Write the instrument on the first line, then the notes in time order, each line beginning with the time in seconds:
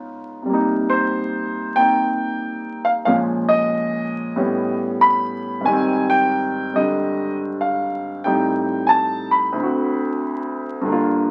grand piano
Already playing: C#3 G#3 B3 C#4 D#4 F4
0.42 C3 G3
0.49 A#3
0.53 D#4
0.90 C5
1.76 A#3 C4 D#4 G5
2.85 F5
3.05 A#2 F3 G#3 C#4 F5
3.49 D#5
4.36 A2 G3 B3 C#4
5.01 B5
5.61 G#2 D#3
5.66 G3 G#5
5.72 C4
6.10 G5
6.74 D3 G3 D#5
7.61 F5
8.24 A2 G3 C4 D#4 G5
8.87 G#5 A5
9.31 B5
9.52 D2
9.56 D3 C4
9.63 F#4
10.81 G2 D3
10.89 A#3 F4